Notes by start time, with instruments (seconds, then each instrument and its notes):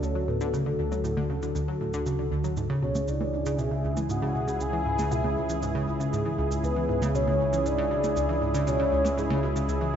Already playing: analog synth pad D2 D3 F#4 A4
0.03 synth arpeggio sound D2, soft synth lead C#5, cabasa
0.15 synth arpeggio sound F#3
0.28 synth arpeggio sound A2, soft synth lead B4
0.41 synth arpeggio sound D3, cabasa
0.54 synth arpeggio sound C#3, soft synth lead A4, cabasa
0.66 synth arpeggio sound D3
0.79 synth arpeggio sound D2
0.92 synth arpeggio sound F#3, high conga, cabasa
1.04 synth arpeggio sound A2, cabasa
1.17 synth arpeggio sound D3, high conga
1.30 synth arpeggio sound C#3
1.43 synth arpeggio sound D3, cabasa
1.55 synth arpeggio sound D2, cabasa
1.68 synth arpeggio sound F#3
1.81 synth arpeggio sound A2
1.94 synth arpeggio sound D3, cabasa
2.06 synth arpeggio sound C#3, cabasa
2.19 synth arpeggio sound D3
2.32 synth arpeggio sound D2
2.44 synth arpeggio sound F#3, cabasa
2.57 analog synth pad C#2 C#3 E4 G#4, synth arpeggio sound G#2, cabasa
2.70 synth arpeggio sound C#3
2.82 synth arpeggio sound B2, soft synth lead C#5
2.95 synth arpeggio sound C#3, high conga, cabasa
3.08 synth arpeggio sound C#2, soft synth lead D5, cabasa
3.21 synth arpeggio sound E3, high conga
3.34 synth arpeggio sound G#2
3.46 synth arpeggio sound C#3, cabasa
3.59 synth arpeggio sound B2, soft synth lead E5, cabasa
3.71 synth arpeggio sound C#3
3.84 synth arpeggio sound C#2
3.97 synth arpeggio sound E3, high conga, cabasa
4.09 synth arpeggio sound G#2, soft synth lead F#5, cabasa
4.22 synth arpeggio sound C#3
4.35 synth arpeggio sound B2
4.48 synth arpeggio sound C#3, cabasa
4.60 synth arpeggio sound C#2, soft synth lead G#5, cabasa
4.73 synth arpeggio sound E3
4.86 synth arpeggio sound G#2
4.99 synth arpeggio sound C#3, high conga, cabasa
5.11 synth arpeggio sound B2, soft synth lead E5, cabasa
5.24 synth arpeggio sound C#3, high conga
5.37 synth arpeggio sound C#2
5.49 synth arpeggio sound E3, cabasa
5.62 synth arpeggio sound G#2, cabasa
5.75 synth arpeggio sound C#3
5.88 synth arpeggio sound C#2
6.00 synth arpeggio sound C#3, cabasa
6.13 synth arpeggio sound G#2, cabasa
6.26 synth arpeggio sound E3
6.38 synth arpeggio sound C#2
6.51 synth arpeggio sound C#2, cabasa
6.64 synth arpeggio sound C#2, soft synth lead B4, cabasa
6.76 synth arpeggio sound E3
6.89 synth arpeggio sound G#2
7.02 synth arpeggio sound C#3, high conga, cabasa
7.15 synth arpeggio sound B2, soft synth lead C#5, cabasa
7.28 synth arpeggio sound C#3, high conga
7.40 synth arpeggio sound C#2
7.53 synth arpeggio sound E3, cabasa
7.66 synth arpeggio sound G#2, soft synth lead D5, cabasa
7.78 synth arpeggio sound C#3
7.91 synth arpeggio sound B2
8.04 synth arpeggio sound C#3, high conga, cabasa
8.16 synth arpeggio sound C#2, cabasa
8.29 synth arpeggio sound E3
8.42 synth arpeggio sound G#2
8.54 synth arpeggio sound C#3, cabasa
8.67 synth arpeggio sound B2, soft synth lead C#5, cabasa
8.80 synth arpeggio sound C#3
8.92 synth arpeggio sound C#2
9.05 synth arpeggio sound E3, high conga, cabasa
9.18 synth arpeggio sound G#2, soft synth lead G#4, cabasa
9.30 synth arpeggio sound C#3, high conga
9.43 synth arpeggio sound B2
9.56 synth arpeggio sound C#3, cabasa
9.69 synth arpeggio sound C#2, cabasa
9.81 synth arpeggio sound E3